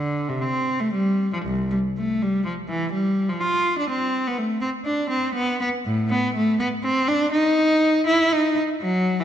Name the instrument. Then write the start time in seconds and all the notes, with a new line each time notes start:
cello
Already playing: D3
0.29 C3
0.41 C4
0.81 A3
0.93 G3
1.33 F3
1.46 C2
1.71 G3
1.97 A3
2.22 G3
2.45 F3
2.68 E3
2.92 G3
3.29 F3
3.40 F4
3.79 D4
3.90 C4
4.27 B3
4.38 A3
4.61 C4
4.85 D4
5.10 C4
5.35 B3
5.61 B3
5.85 A2
6.10 B3
6.35 A3
6.59 B3
6.83 C4
7.08 D4
7.32 D#4
8.06 E4
8.33 D#4
8.82 F#3
9.20 E3